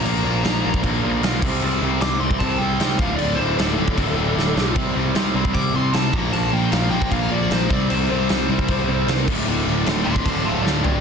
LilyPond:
<<
  \new Staff \with { instrumentName = "Lead electric guitar" } { \time 4/4 \key c \mixolydian \tempo 4 = 153 << { bes''2 r2 | r4 d'''8 c'''8 a''8 g''4 f''8 | d''8 c''8 a'2. | r2 d'''8 c'''8 a''8 bes''8 |
a''8 g''8 f''8 g''8 f''8 d''8 c''8 d''8 | c''8 c''2. r8 | r4. c'''8 c'''8 a''8 a''8 g''8 | } \\ { r1 | r1 | r1 | r1 |
r1 | r1 | r4. a''8 a''8 f''8 <d' d'' f''>4 | } >> }
  \new Staff \with { instrumentName = "Distorted electric guitar" } { \clef bass \time 4/4 \key c \mixolydian r1 | r1 | r1 | <c g c'>2.~ <c g c'>8 <bes, f bes>8~ |
<bes, f bes>2.~ <bes, f bes>8 <c g c'>8~ | <c g c'>2.~ <c g c'>8 <d, a, d>8~ | <d, a, d>2.~ <d, a, d>8 r8 | }
  \new Staff \with { instrumentName = "Distorted electric guitar" } { \clef bass \time 4/4 \key c \mixolydian <bes, f bes>8 <bes, f bes>8 <bes, f bes>8 <bes, f bes>8 <bes, f bes>8 <bes, f bes>8 <bes, f bes>8 <c g c'>8 | <c g c'>8 <c g c'>8 <c g c'>8 <c g c'>8 <c g c'>8 <c g c'>8 <c g c'>8 <d, a, d>8 | <d, a, d>8 <d, a, d>8 <d, a, d>8 <d, a, d>8 <d, a, d>8 <d, a, d>8 <d, a, d>8 <d, a, d>8 | <c g c'>8 <c g c'>8 <c g c'>8 <c g c'>8 <c g c'>8 <c g c'>8 <c g c'>8 <bes, f bes>8 |
<bes, f bes>8 <bes, f bes>8 <bes, f bes>8 <bes, f bes>8 <bes, f bes>8 <bes, f bes>8 <bes, f bes>8 <c g c'>8 | <c g c'>8 <c g c'>8 <c g c'>8 <c g c'>8 <c g c'>8 <c g c'>8 <c g c'>8 <d, a, d>8 | <d, a, d>8 <d, a, d>8 <d, a, d>8 <d, a, d>8 <d, a, d>8 <d, a, d>8 <d, a, d>8 <d, a, d>8 | }
  \new Staff \with { instrumentName = "Distorted electric guitar" } { \clef bass \time 4/4 \key c \mixolydian <bes, f bes>8 <bes, f bes>8 <bes, f bes>8 <bes, f bes>8 <bes, f bes>8 <bes, f bes>8 <bes, f bes>8 <c g c'>8 | <c g c'>8 <c g c'>8 <c g c'>8 <c g c'>8 <c g c'>8 <c g c'>8 <c g c'>8 <d, a, d>8 | <d, a, d>8 <d, a, d>8 <d, a, d>8 <d, a, d>8 <d, a, d>8 <d, a, d>8 <d, a, d>8 <d, a, d>8 | <c g c'>8 <c g c'>8 <c g c'>8 <c g c'>8 <c g c'>8 <c g c'>8 <c g c'>8 <bes, f bes>8 |
<bes, f bes>8 <bes, f bes>8 <bes, f bes>8 <bes, f bes>8 <bes, f bes>8 <bes, f bes>8 <bes, f bes>8 <c g c'>8 | <c g c'>8 <c g c'>8 <c g c'>8 <c g c'>8 <c g c'>8 <c g c'>8 <c g c'>8 <d, a, d>8 | <d, a, d>8 <d, a, d>8 <d, a, d>8 <d, a, d>8 <d, a, d>8 <d, a, d>8 <d, a, d>8 <d, a, d>8 | }
  \new Staff \with { instrumentName = "Picked electric bass" } { \clef bass \time 4/4 \key c \mixolydian bes,,8 bes,,8 bes,,8 bes,,8 bes,,8 bes,,8 b,,8 c,8 | c,8 c,8 c,8 c,8 c,8 c,8 c,8 d,,8 | d,,8 d,,8 d,,8 d,,8 d,,8 d,,8 d,,8 b,,8 | c,8 c,8 c,8 c,8 c,8 c,8 c,8 bes,,8 |
bes,,8 bes,,8 bes,,8 bes,,8 bes,,8 bes,,8 bes,,8 c,8 | c,8 c,8 c,8 c,8 c,8 c,8 c,8 d,,8 | d,,8 d,,8 d,,8 d,,8 d,,8 d,,8 d,,8 d,,8 | }
  \new DrumStaff \with { instrumentName = "Drums" } \drummode { \time 4/4 cymc4 <cymc sn>8. bd16 <cymc bd>4 <cymc sn>8 <cymc bd>8 | cymc4 <cymc sn>8. bd16 <cymc bd>4 <cymc sn>8 bd8 | cymc4 <cymc sn>8. bd16 <cymc bd>4 sn8 sn8 | <cymc bd>4 <cymc sn>8. bd16 <cymc bd>4 <cymc sn>8 bd8 |
cymc4 <cymc sn>8. bd16 <cymc bd>4 <cymc sn>8 bd8 | cymc4 <cymc sn>8. bd16 <cymc bd>4 <cymc sn>8 <cymc bd>8 | cymc4 <cymc sn>8. bd16 <cymc bd>4 sn8 tomfh8 | }
>>